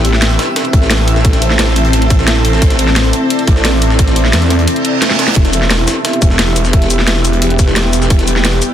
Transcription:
Already playing: detuned saw bass A1, analog synth pad C4 E4 A4 E5, ambient pad C4 G4 E5
0.00 ambient pad A4
0.05 closed hi-hat
0.13 snare
0.22 snare, closed hi-hat
0.31 closed hi-hat
0.39 snare, closed hi-hat
0.56 snare, closed hi-hat
0.65 closed hi-hat
0.73 detuned saw bass A1, kick, closed hi-hat
0.82 snare
0.90 snare, closed hi-hat, open hi-hat
1.08 closed hi-hat
1.16 snare
1.25 kick, closed hi-hat
1.33 snare, closed hi-hat
1.42 closed hi-hat
1.50 snare
1.59 detuned saw bass A1, snare, closed hi-hat
1.68 snare
1.76 closed hi-hat
1.85 closed hi-hat
1.93 closed hi-hat
2.02 closed hi-hat
2.10 kick, closed hi-hat
2.19 snare
2.27 snare, closed hi-hat
2.45 closed hi-hat
2.53 snare
2.62 detuned saw bass A1, analog synth pad D5, kick, closed hi-hat
2.70 snare, closed hi-hat
2.79 closed hi-hat
2.88 snare
2.96 snare, closed hi-hat
3.05 closed hi-hat
3.13 closed hi-hat
3.30 closed hi-hat
3.39 closed hi-hat
3.47 detuned saw bass A1, kick, closed hi-hat
3.56 snare
3.65 snare, closed hi-hat, open hi-hat
3.82 closed hi-hat
3.90 snare
3.99 kick, closed hi-hat
4.08 snare, closed hi-hat
4.16 closed hi-hat
4.25 snare
4.33 detuned saw bass E2, snare, closed hi-hat
4.42 snare, closed hi-hat
4.50 snare, closed hi-hat
4.59 closed hi-hat
4.68 closed hi-hat, reverse cymbal
4.76 closed hi-hat
4.85 closed hi-hat
5.02 snare, closed hi-hat
5.10 snare
5.19 snare, closed hi-hat
5.28 snare
5.36 detuned saw bass E1, analog synth pad B3 G4 E5, ambient pad B3, kick, closed hi-hat
5.45 ambient pad G4, snare, closed hi-hat
5.53 closed hi-hat, shaker
5.62 snare
5.70 snare, closed hi-hat
5.79 closed hi-hat
5.88 snare, closed hi-hat, shaker
6.05 snare, closed hi-hat
6.13 closed hi-hat
6.22 detuned saw bass E1, kick, closed hi-hat, shaker
6.30 snare
6.39 snare, closed hi-hat, open hi-hat
6.56 closed hi-hat, shaker
6.65 snare, shaker
6.73 kick, closed hi-hat
6.82 snare, closed hi-hat
6.90 closed hi-hat, shaker
6.99 snare
7.07 detuned saw bass E1, snare, closed hi-hat
7.16 snare
7.25 closed hi-hat, shaker
7.33 closed hi-hat
7.42 closed hi-hat
7.50 closed hi-hat
7.59 kick, closed hi-hat, shaker
7.68 snare
7.76 snare, closed hi-hat
7.93 closed hi-hat, shaker
8.02 snare, shaker
8.10 detuned saw bass E1, analog synth pad D5, kick, closed hi-hat
8.19 snare, closed hi-hat
8.28 closed hi-hat, shaker
8.36 snare
8.45 snare, closed hi-hat
8.53 closed hi-hat
8.62 closed hi-hat, shaker

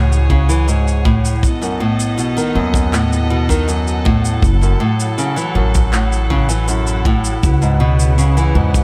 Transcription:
Already playing: upright bass C#2, nylon-string guitar A2, string quartet G#4 C#5, synth texture F#5
0.13 shaker
0.30 nylon-string guitar C#3, kick
0.49 nylon-string guitar E3, shaker
0.68 nylon-string guitar G#2, shaker
0.88 shaker
1.05 nylon-string guitar A2, kick
1.25 shaker
1.43 upright bass B1, string quartet B3 A4 D#5, kick, shaker
1.62 nylon-string guitar F#2, shaker
1.80 nylon-string guitar A2
2.00 shaker
2.18 nylon-string guitar B2, shaker
2.37 nylon-string guitar D#3, shaker
2.55 upright bass D#2, nylon-string guitar F#2
2.74 kick, shaker
2.93 nylon-string guitar A2, clap, shaker
3.13 shaker
3.30 nylon-string guitar B2
3.49 nylon-string guitar D#3, kick, shaker
3.68 nylon-string guitar F#2, shaker
3.88 shaker
4.05 nylon-string guitar A2, kick
4.25 shaker
4.42 upright bass F#1, string quartet F#3 E4, kick, shaker
4.61 nylon-string guitar F#2, shaker
4.80 nylon-string guitar A2
5.00 shaker
5.18 nylon-string guitar C#3, shaker
5.36 nylon-string guitar E3, shaker
5.55 upright bass A1, nylon-string guitar F#2
5.75 kick, shaker
5.93 nylon-string guitar A2, clap, shaker
6.13 shaker
6.30 nylon-string guitar C#3, kick
6.49 nylon-string guitar E3, shaker
6.68 nylon-string guitar F#2, shaker
6.87 shaker
7.05 nylon-string guitar A2, kick
7.25 shaker
7.43 upright bass C#2, string quartet C#3 B3, kick, shaker
7.62 nylon-string guitar G#2, shaker
7.80 nylon-string guitar B2
8.00 shaker
8.18 nylon-string guitar C#3, shaker
8.37 nylon-string guitar E3, shaker
8.55 upright bass E2, nylon-string guitar G#2
8.74 kick, shaker

